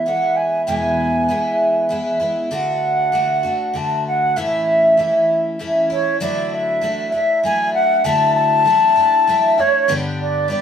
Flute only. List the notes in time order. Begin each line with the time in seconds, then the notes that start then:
0.06 F#5
0.36 G#5
0.66 G#5
2.53 F#5
3.77 A5
4.07 F#5
4.37 E5
5.91 C#5
6.20 D5
6.53 E5
7.15 E5
7.44 G#5
7.74 F#5
8.05 A5
8.35 A5
9.59 C#5
10.20 D5
10.51 D5